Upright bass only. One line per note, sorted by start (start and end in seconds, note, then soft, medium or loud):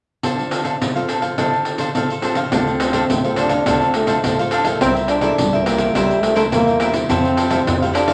2.52 3.01 D2 medium
3.10 3.59 D2 medium
3.67 4.16 D2 medium
4.24 4.73 D2 medium
4.82 5.30 C2 medium
5.39 5.87 C2 loud
5.96 6.53 C2 medium
6.53 7.01 E2 medium
7.10 7.58 F2 medium
7.67 8.13 F2 medium